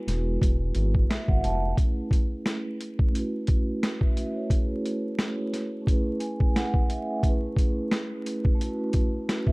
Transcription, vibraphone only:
0, 0, Header, 1, 2, 480
1, 0, Start_track
1, 0, Tempo, 681818
1, 1249, Time_signature, 4, 2, 24, 8
1, 6704, End_track
2, 0, Start_track
2, 0, Title_t, "Vibraphone"
2, 0, Program_c, 0, 11
2, 0, Control_c, 0, 64, 127
2, 0, Note_on_c, 0, 56, 80
2, 0, Note_on_c, 0, 59, 75
2, 0, Note_on_c, 0, 64, 70
2, 0, Note_on_c, 0, 66, 73
2, 0, Note_on_c, 0, 71, 92
2, 770, Note_on_c, 0, 76, 73
2, 894, Note_off_c, 0, 76, 0
2, 903, Note_on_c, 0, 78, 70
2, 1002, Note_off_c, 0, 78, 0
2, 1013, Note_on_c, 0, 81, 75
2, 1203, Note_off_c, 0, 56, 0
2, 1212, Note_off_c, 0, 59, 0
2, 1217, Note_on_c, 0, 57, 66
2, 1220, Note_off_c, 0, 64, 0
2, 1229, Note_off_c, 0, 66, 0
2, 1234, Note_off_c, 0, 81, 0
2, 1235, Note_on_c, 0, 61, 65
2, 1238, Note_off_c, 0, 71, 0
2, 1257, Control_c, 0, 64, 0
2, 1269, Note_on_c, 0, 68, 64
2, 1287, Note_on_c, 0, 71, 83
2, 1387, Control_c, 0, 64, 127
2, 2167, Note_off_c, 0, 57, 0
2, 2176, Note_on_c, 0, 57, 69
2, 2183, Note_off_c, 0, 61, 0
2, 2193, Note_on_c, 0, 61, 71
2, 2200, Note_off_c, 0, 68, 0
2, 2209, Note_off_c, 0, 71, 0
2, 2211, Note_on_c, 0, 64, 62
2, 2218, Control_c, 0, 64, 0
2, 2229, Note_on_c, 0, 66, 65
2, 2246, Note_on_c, 0, 71, 77
2, 2349, Control_c, 0, 64, 127
2, 2684, Note_off_c, 0, 71, 0
2, 2688, Note_off_c, 0, 66, 0
2, 2693, Note_on_c, 0, 71, 59
2, 2696, Note_on_c, 0, 66, 50
2, 2818, Note_off_c, 0, 71, 0
2, 2820, Note_off_c, 0, 66, 0
2, 2827, Note_on_c, 0, 76, 71
2, 2831, Note_on_c, 0, 71, 56
2, 3053, Note_off_c, 0, 76, 0
2, 3055, Note_off_c, 0, 71, 0
2, 3058, Note_on_c, 0, 73, 61
2, 3062, Note_on_c, 0, 66, 54
2, 3130, Note_off_c, 0, 57, 0
2, 3139, Note_on_c, 0, 57, 74
2, 3142, Note_off_c, 0, 61, 0
2, 3151, Note_off_c, 0, 64, 0
2, 3155, Note_on_c, 0, 61, 67
2, 3178, Control_c, 0, 64, 0
2, 3208, Note_on_c, 0, 71, 78
2, 3283, Control_c, 0, 64, 127
2, 3288, Note_off_c, 0, 73, 0
2, 3291, Note_off_c, 0, 66, 0
2, 4083, Note_off_c, 0, 57, 0
2, 4092, Note_on_c, 0, 57, 73
2, 4100, Note_off_c, 0, 61, 0
2, 4108, Note_on_c, 0, 61, 70
2, 4126, Note_on_c, 0, 64, 66
2, 4130, Note_off_c, 0, 71, 0
2, 4138, Control_c, 0, 64, 0
2, 4143, Note_on_c, 0, 68, 64
2, 4161, Note_on_c, 0, 71, 82
2, 4267, Control_c, 0, 64, 127
2, 4361, Note_on_c, 0, 80, 76
2, 4588, Note_off_c, 0, 80, 0
2, 4612, Note_on_c, 0, 78, 74
2, 4834, Note_off_c, 0, 78, 0
2, 4848, Note_on_c, 0, 76, 69
2, 5051, Note_off_c, 0, 57, 0
2, 5059, Note_off_c, 0, 61, 0
2, 5059, Note_on_c, 0, 57, 71
2, 5068, Note_off_c, 0, 64, 0
2, 5071, Note_off_c, 0, 76, 0
2, 5077, Note_off_c, 0, 68, 0
2, 5077, Note_on_c, 0, 61, 67
2, 5086, Note_off_c, 0, 71, 0
2, 5094, Note_on_c, 0, 64, 64
2, 5098, Control_c, 0, 64, 0
2, 5112, Note_on_c, 0, 68, 66
2, 5129, Note_on_c, 0, 71, 80
2, 5212, Control_c, 0, 64, 127
2, 6010, Note_off_c, 0, 57, 0
2, 6018, Note_on_c, 0, 57, 72
2, 6023, Note_off_c, 0, 61, 0
2, 6033, Note_off_c, 0, 64, 0
2, 6036, Note_on_c, 0, 61, 74
2, 6042, Note_off_c, 0, 68, 0
2, 6050, Note_off_c, 0, 71, 0
2, 6053, Note_on_c, 0, 64, 66
2, 6059, Control_c, 0, 64, 0
2, 6071, Note_on_c, 0, 66, 64
2, 6089, Note_on_c, 0, 71, 77
2, 6176, Control_c, 0, 64, 127
2, 6525, Note_off_c, 0, 71, 0
2, 6531, Note_off_c, 0, 66, 0
2, 6533, Note_on_c, 0, 71, 61
2, 6539, Note_on_c, 0, 66, 52
2, 6658, Note_off_c, 0, 71, 0
2, 6661, Note_off_c, 0, 66, 0
2, 6668, Note_on_c, 0, 76, 73
2, 6672, Note_on_c, 0, 71, 57
2, 6704, Note_off_c, 0, 57, 0
2, 6704, Note_off_c, 0, 61, 0
2, 6704, Note_off_c, 0, 64, 0
2, 6704, Note_off_c, 0, 71, 0
2, 6704, Note_off_c, 0, 76, 0
2, 6704, End_track
0, 0, End_of_file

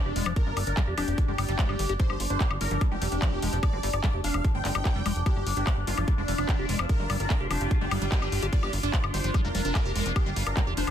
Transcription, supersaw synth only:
0, 0, Header, 1, 2, 480
1, 0, Start_track
1, 0, Tempo, 408163
1, 427, Time_signature, 4, 2, 24, 8
1, 12825, End_track
2, 0, Start_track
2, 0, Title_t, "Supersaw synth"
2, 0, Program_c, 0, 81
2, 0, Note_on_c, 0, 62, 102
2, 331, Note_off_c, 0, 62, 0
2, 427, Note_on_c, 0, 70, 100
2, 663, Note_off_c, 0, 70, 0
2, 787, Note_on_c, 0, 70, 96
2, 1024, Note_off_c, 0, 70, 0
2, 1147, Note_on_c, 0, 67, 100
2, 1384, Note_off_c, 0, 67, 0
2, 1507, Note_on_c, 0, 67, 100
2, 2251, Note_off_c, 0, 67, 0
2, 2347, Note_on_c, 0, 72, 105
2, 2584, Note_off_c, 0, 72, 0
2, 2707, Note_on_c, 0, 72, 95
2, 2944, Note_off_c, 0, 72, 0
2, 3067, Note_on_c, 0, 70, 99
2, 3304, Note_off_c, 0, 70, 0
2, 3427, Note_on_c, 0, 67, 101
2, 4171, Note_off_c, 0, 67, 0
2, 4267, Note_on_c, 0, 74, 103
2, 4504, Note_off_c, 0, 74, 0
2, 4627, Note_on_c, 0, 74, 98
2, 4864, Note_off_c, 0, 74, 0
2, 4987, Note_on_c, 0, 77, 99
2, 5224, Note_off_c, 0, 77, 0
2, 5347, Note_on_c, 0, 79, 99
2, 6091, Note_off_c, 0, 79, 0
2, 6188, Note_on_c, 0, 67, 102
2, 6424, Note_off_c, 0, 67, 0
2, 6547, Note_on_c, 0, 67, 95
2, 6784, Note_off_c, 0, 67, 0
2, 6908, Note_on_c, 0, 65, 98
2, 7144, Note_off_c, 0, 65, 0
2, 7268, Note_on_c, 0, 62, 100
2, 8012, Note_off_c, 0, 62, 0
2, 8107, Note_on_c, 0, 70, 100
2, 8344, Note_off_c, 0, 70, 0
2, 8467, Note_on_c, 0, 70, 94
2, 8704, Note_off_c, 0, 70, 0
2, 8827, Note_on_c, 0, 67, 98
2, 9064, Note_off_c, 0, 67, 0
2, 9187, Note_on_c, 0, 67, 102
2, 9931, Note_off_c, 0, 67, 0
2, 10027, Note_on_c, 0, 74, 102
2, 10264, Note_off_c, 0, 74, 0
2, 10387, Note_on_c, 0, 74, 96
2, 10624, Note_off_c, 0, 74, 0
2, 10747, Note_on_c, 0, 72, 98
2, 10984, Note_off_c, 0, 72, 0
2, 11108, Note_on_c, 0, 70, 104
2, 11852, Note_off_c, 0, 70, 0
2, 11947, Note_on_c, 0, 67, 102
2, 12184, Note_off_c, 0, 67, 0
2, 12307, Note_on_c, 0, 70, 96
2, 12544, Note_off_c, 0, 70, 0
2, 12667, Note_on_c, 0, 72, 101
2, 12825, Note_off_c, 0, 72, 0
2, 12825, End_track
0, 0, End_of_file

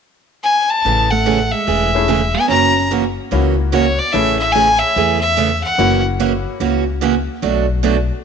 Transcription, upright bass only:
0, 0, Header, 1, 2, 480
1, 0, Start_track
1, 0, Key_signature, 3, "major"
1, 0, Tempo, 410959
1, 999, Time_signature, 4, 2, 24, 8
1, 9625, End_track
2, 0, Start_track
2, 0, Title_t, "Upright bass"
2, 0, Program_c, 0, 32
2, 996, Note_on_c, 0, 33, 80
2, 1766, Note_off_c, 0, 33, 0
2, 1954, Note_on_c, 0, 28, 83
2, 2725, Note_off_c, 0, 28, 0
2, 2912, Note_on_c, 0, 30, 78
2, 3684, Note_off_c, 0, 30, 0
2, 3875, Note_on_c, 0, 37, 82
2, 4645, Note_off_c, 0, 37, 0
2, 4835, Note_on_c, 0, 33, 86
2, 5605, Note_off_c, 0, 33, 0
2, 5796, Note_on_c, 0, 40, 78
2, 6565, Note_off_c, 0, 40, 0
2, 6754, Note_on_c, 0, 30, 83
2, 7523, Note_off_c, 0, 30, 0
2, 7709, Note_on_c, 0, 37, 75
2, 8480, Note_off_c, 0, 37, 0
2, 8675, Note_on_c, 0, 35, 87
2, 9443, Note_off_c, 0, 35, 0
2, 9625, End_track
0, 0, End_of_file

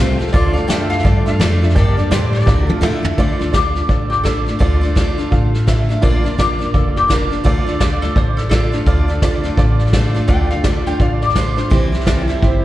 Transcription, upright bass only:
0, 0, Header, 1, 3, 480
1, 0, Start_track
1, 0, Key_signature, -1, "minor"
1, 0, Tempo, 355450
1, 456, Time_signature, 4, 2, 24, 8
1, 17081, End_track
2, 0, Start_track
2, 0, Title_t, "Upright bass"
2, 0, Program_c, 0, 32
2, 0, Note_on_c, 0, 36, 97
2, 445, Note_off_c, 0, 36, 0
2, 455, Note_on_c, 0, 38, 81
2, 917, Note_off_c, 0, 38, 0
2, 926, Note_on_c, 0, 42, 84
2, 1396, Note_off_c, 0, 42, 0
2, 1412, Note_on_c, 0, 43, 88
2, 1879, Note_off_c, 0, 43, 0
2, 1885, Note_on_c, 0, 41, 105
2, 2355, Note_off_c, 0, 41, 0
2, 2378, Note_on_c, 0, 43, 85
2, 2837, Note_off_c, 0, 43, 0
2, 2845, Note_on_c, 0, 45, 86
2, 3315, Note_off_c, 0, 45, 0
2, 3336, Note_on_c, 0, 38, 86
2, 3789, Note_off_c, 0, 38, 0
2, 3797, Note_on_c, 0, 40, 90
2, 4078, Note_off_c, 0, 40, 0
2, 4292, Note_on_c, 0, 38, 78
2, 5124, Note_off_c, 0, 38, 0
2, 5249, Note_on_c, 0, 33, 78
2, 6082, Note_off_c, 0, 33, 0
2, 6217, Note_on_c, 0, 38, 79
2, 7047, Note_off_c, 0, 38, 0
2, 7182, Note_on_c, 0, 33, 83
2, 8011, Note_off_c, 0, 33, 0
2, 8141, Note_on_c, 0, 34, 83
2, 8970, Note_off_c, 0, 34, 0
2, 9101, Note_on_c, 0, 29, 80
2, 9930, Note_off_c, 0, 29, 0
2, 10060, Note_on_c, 0, 38, 82
2, 10890, Note_off_c, 0, 38, 0
2, 11014, Note_on_c, 0, 33, 80
2, 11846, Note_off_c, 0, 33, 0
2, 11969, Note_on_c, 0, 38, 83
2, 12803, Note_off_c, 0, 38, 0
2, 12926, Note_on_c, 0, 33, 79
2, 13761, Note_off_c, 0, 33, 0
2, 13889, Note_on_c, 0, 38, 78
2, 14723, Note_off_c, 0, 38, 0
2, 14848, Note_on_c, 0, 33, 81
2, 15682, Note_off_c, 0, 33, 0
2, 15817, Note_on_c, 0, 36, 86
2, 16646, Note_off_c, 0, 36, 0
2, 16775, Note_on_c, 0, 31, 78
2, 17081, Note_off_c, 0, 31, 0
2, 17081, End_track
3, 0, Start_track
3, 0, Title_t, "Muted upright bass strokes"
3, 4100, Note_on_c, 9, 29, 44
3, 4235, Note_off_c, 9, 29, 0
3, 17081, End_track
0, 0, End_of_file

